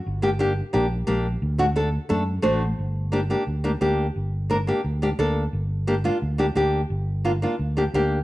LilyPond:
<<
  \new Staff \with { instrumentName = "Nylon-string guitar" } { \time 4/4 \key d \phrygian \tempo 4 = 175 << { r1 | r2. c''4 | \key g \minor r1 | r1 |
r1 | r1 | } \\ { r8 <bes d' g'>8 <bes d' g'>8 r8 <bes d' g'>8 r8 <bes d' g'>8 r8 | r8 <a d' fis'>8 <a d' a'>8 r8 <a d' a'>8 r8 <a d' fis'>8 r8 | r4 <bes d' g'>8 <bes d' g'>8 r8 <bes d' g'>8 <bes d' g'>8 r8 | r4 <bes d' bes'>8 <bes d' g'>8 r8 <bes d' g'>8 <bes d' a'>8 r8 |
r4 <bes d' g'>8 <bes d' f'>8 r8 <bes d' g'>8 <bes d' g'>8 r8 | r4 <bes d' f'>8 <bes d' f'>8 r8 <bes d' g'>8 <bes d' g'>8 r8 | } >> }
  \new Staff \with { instrumentName = "Fingered electric bass" } { \clef bass \time 4/4 \key d \phrygian g,,2 bes,,4 bes,,4 | d,2 fis,4 a,,4 | \key g \minor g,,2 d,4 d,4 | g,,2 d,4 d,4 |
g,,2 d,4 d,4 | g,,2 d,4 d,4 | }
>>